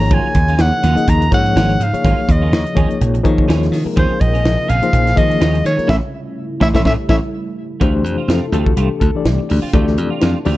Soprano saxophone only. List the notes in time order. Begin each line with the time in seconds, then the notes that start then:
Already playing: A#5
0.13 G#5
0.61 F#5
1.09 A#5
1.34 F#5
1.83 F5
2.31 D#5
3.98 C5
4.20 D#5
4.69 F5
5.18 D#5
5.66 C#5
5.90 E5
6.62 E5
6.75 E5
6.86 E5
7.10 E5